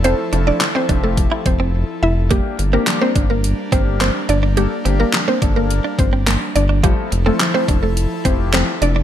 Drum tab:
HH |xxxxxx--|xxxxxxxx|xxxxxxxx|xxxxxxxx|
CP |--x-----|--x---x-|--x---x-|--x---x-|
SD |--o-----|--o---o-|--o---o-|--o---o-|
BD |---ooo--|o--o-o--|---o-o--|o--o-o--|